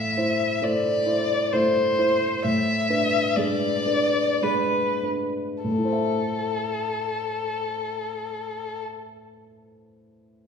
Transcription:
Already playing: A2 E5
0.17 E4 C5
0.61 A3 E4 C5 D5
1.06 E4 C5
1.53 A3 E4 C5
1.98 E4 C5
2.44 A2 E5
2.90 D4 B4
3.36 G#3 D4 B4 D5
3.86 D4 B4
4.42 G#3 D4 B4
5.03 D4 B4
5.64 A2 A4
5.71 A3
5.78 E4
5.85 C5
5.92 E5

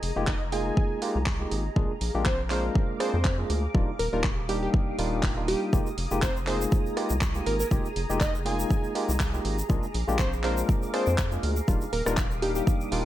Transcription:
Already playing: G#4 D#5 G#5 A#5
0.03 F1, open hi-hat
0.16 F1 G#3 A#3 D#4 F4 G4
0.27 D#5, kick, cross-stick, clap
0.52 G#3 A#3 D#4 F4 G#4 G#5, open hi-hat
0.77 kick
1.01 G#3 A#3 D#4 F4 G4, open hi-hat
1.15 C2
1.26 kick, clap, open hi-hat
1.40 G#3 A#3 D#4 F4 G4
1.51 G#1, open hi-hat
1.76 A#1 G#3 A#3 D4 F4 G#4 F5 D6, kick
2.01 A#1, open hi-hat
2.14 A#1 G#3 A#3 D4 F4 G4
2.25 C5, kick, clap
2.50 G#3 A#3 D4 F4 A#4 C5, clap, open hi-hat
2.75 kick
3.00 G#3 A#3 D4 F4 G#4 C5, cross-stick, open hi-hat
3.14 F2
3.25 kick, clap
3.38 G#3 A#3 D4 F4 G#4
3.50 D2, open hi-hat
3.74 D#1 G3 A#3 D4 D#4 F4 G4 F5 D#6, kick
3.99 D#1 A#4, open hi-hat
4.13 D#1 G3 A#3 D4 D#4 F4 A#4
4.24 kick, cross-stick, clap
4.49 G3 A#3 D4 D#4 G4, open hi-hat
4.63 G4
4.74 kick
4.98 D#1 G3 A#3 D4 D#4 F4, open hi-hat
5.23 kick, clap, open hi-hat
5.37 G3 A#3 D4 D#4 F4
5.48 G4, open hi-hat
5.73 F1 G#3 A#3 D#4 F4 G4 G#4 G#5 A#5, kick, shaker
5.86 shaker
5.98 F1, open hi-hat
6.11 F1 G#3 A#3 D#4 F4 G4, shaker
6.22 C5, kick, clap, shaker
6.36 shaker
6.47 G#3 A#3 D#4 F4 G#4 C5, clap, open hi-hat
6.61 shaker
6.72 kick, shaker
6.86 shaker
6.97 G#3 A#3 D#4 F4 G4, cross-stick, open hi-hat
7.10 C2, shaker
7.21 kick, clap, shaker
7.35 G#3 A#3 D#4 F4 G4, shaker
7.46 G#1 A#4, open hi-hat
7.60 A#4, shaker
7.71 F1 G#3 A#3 D#4 F4 G4, kick, shaker
7.85 shaker
7.96 F1, open hi-hat
8.09 F1 G#3 A#3 D#4 F4 G4, shaker
8.20 D#5, kick, cross-stick, clap, shaker
8.35 shaker
8.45 G#3 A#3 D#4 F4 G#4 G#5, open hi-hat
8.60 shaker
8.70 kick, shaker
8.84 shaker
8.95 G#3 A#3 D#4 F4 G4, open hi-hat
9.09 C2, shaker
9.20 kick, clap, open hi-hat, shaker
9.33 G#3 A#3 D#4 F4 G4, shaker
9.45 G#1, open hi-hat
9.59 shaker
9.69 A#1 G#3 A#3 D4 F4 G#4 F5 D6, kick, shaker
9.83 shaker
9.94 A#1, open hi-hat
10.08 A#1 G#3 A#3 D4 F4 G4, shaker
10.19 C5, kick, clap, shaker
10.33 shaker
10.44 G#3 A#3 D4 F4 A#4 C5, clap, open hi-hat
10.57 shaker
10.69 kick, shaker
10.82 shaker
10.93 G#3 A#3 D4 F4 G#4 C5, cross-stick, open hi-hat
11.06 F2, shaker
11.18 kick, clap, shaker
11.32 G#3 A#3 D4 F4 G#4, shaker
11.43 D2, open hi-hat
11.56 shaker
11.68 D#1 G3 A#3 D4 D#4 F4 G4 D6 D#6, kick, shaker
11.81 shaker
11.93 D#1 A#4, open hi-hat
12.06 D#1 G3 A#3 D4 D#4 F4 A#4, cross-stick, shaker
12.17 kick, cross-stick, clap, shaker
12.31 shaker
12.42 G3 A#3 D4 D#4 G4, open hi-hat
12.55 G4, shaker
12.67 kick, shaker
12.81 shaker
12.92 D#1 G3 A#3 D4 D#4 F4, open hi-hat

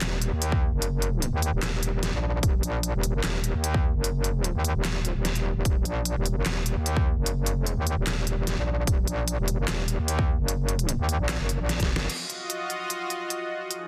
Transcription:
0.01 D#1, snare, clap, closed hi-hat
0.22 closed hi-hat
0.32 D#2
0.42 closed hi-hat
0.52 kick
0.72 F#1
0.82 closed hi-hat
1.02 closed hi-hat
1.22 closed hi-hat
1.33 D#2
1.42 closed hi-hat
1.53 D#1
1.63 snare, clap, closed hi-hat
1.83 closed hi-hat
2.03 snare, closed hi-hat
2.13 A#1
2.43 D#1, kick, closed hi-hat
2.63 A#1, closed hi-hat
2.83 closed hi-hat
2.94 D#1
3.03 closed hi-hat
3.14 F#1
3.24 D#1, snare, clap, closed hi-hat
3.44 closed hi-hat
3.54 D#2
3.64 closed hi-hat
3.74 kick
3.95 F#1
4.04 closed hi-hat
4.24 closed hi-hat
4.44 closed hi-hat
4.55 D#2
4.65 closed hi-hat
4.75 D#1
4.85 snare, clap, closed hi-hat
5.05 closed hi-hat
5.15 D#1
5.25 snare, closed hi-hat
5.35 closed hi-hat
5.56 D#1
5.65 D#1, kick, closed hi-hat
5.85 A#1, closed hi-hat
6.05 closed hi-hat
6.16 D#1
6.26 closed hi-hat
6.36 F#1
6.46 D#1, snare, clap, closed hi-hat
6.66 closed hi-hat
6.76 D#2
6.86 closed hi-hat
6.97 kick
7.17 F#1
7.26 closed hi-hat
7.46 closed hi-hat
7.59 F1
7.67 closed hi-hat
7.77 D#2
7.87 closed hi-hat
7.97 D#1
8.07 snare, clap, closed hi-hat
8.27 closed hi-hat
8.47 snare, closed hi-hat
8.58 A#1
8.87 D#1, kick, closed hi-hat
9.07 A#1, closed hi-hat
9.28 closed hi-hat
9.38 D#1
9.48 closed hi-hat
9.58 F#1
9.68 D#1, snare, clap, closed hi-hat
9.88 closed hi-hat
9.99 D#2
10.08 closed hi-hat
10.19 kick
10.39 F#1
10.48 closed hi-hat
10.69 closed hi-hat
10.79 closed hi-hat
10.89 closed hi-hat
10.99 D#2
11.09 closed hi-hat
11.19 A#1
11.29 snare, clap, closed hi-hat
11.40 F#1
11.49 closed hi-hat
11.60 A#1
11.69 snare, closed hi-hat
11.80 D#1, kick, snare, closed hi-hat
11.96 F#1, snare
12.09 F4 F#4 D#5, closed hi-hat, crash
12.30 closed hi-hat
12.50 closed hi-hat
12.70 closed hi-hat
12.90 closed hi-hat
13.10 closed hi-hat
13.30 closed hi-hat
13.71 F3 D#4 G#4, closed hi-hat

